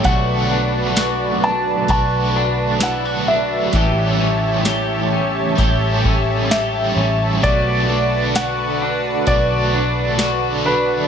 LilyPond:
<<
  \new Staff \with { instrumentName = "Felt piano" } { \time 4/4 \key b \minor \tempo 4 = 65 fis''4. a''8 a''4 fis''8 e''8~ | e''8 r2 r8 e''4 | d''4 fis''4 d''4. b'8 | }
  \new Staff \with { instrumentName = "Analog synth pad" } { \time 4/4 \key b \minor << { a''1~ | a''1~ | a''1 | } \\ { <fis' b' d''>1 | <g' cis'' e''>1 | <fis' b' d''>1 | } >> }
  \new Staff \with { instrumentName = "Clean electric guitar" } { \time 4/4 \key b \minor <a fis'>8 d'8 fis'8 d'8 fis'8 d'8 e'16 fis'16 d'8 | <e g'>8 cis'8 g'8 cis'8 g'8 cis'8 g'8 cis'8 | <a fis'>8 d'8 fis'8 d'8 fis'8 d'8 fis'8 d'8 | }
  \new Staff \with { instrumentName = "Overdriven electric guitar" } { \time 4/4 \key b \minor <b, fis a d' a'>2 <fis a d' a'>4 <fis a d' a'>4 | <a, e g a cis' a'>2 <g a cis' a'>4 <g a cis' a'>4 | <b, fis a d' a'>8 <a d' a'>4. <fis a d' a'>4 <fis a d' a'>4 | }
  \new Staff \with { instrumentName = "Picked electric bass" } { \clef bass \time 4/4 \key b \minor b,,2 b,,2 | a,,2 a,,4. a,,8 | b,,2 b,,2 | }
  \new DrumStaff \with { instrumentName = "Drums" } \drummode { \time 4/4 <hh bd>4 <hh sn tamb>4 <hh bd>4 <hh sn tamb>4 | <hh bd>4 <hh sn tamb>4 <hh bd>8 bd8 <hh sn tamb>4 | <hh bd>4 <hh sn tamb>4 <hh bd>4 <hh sn tamb>4 | }
>>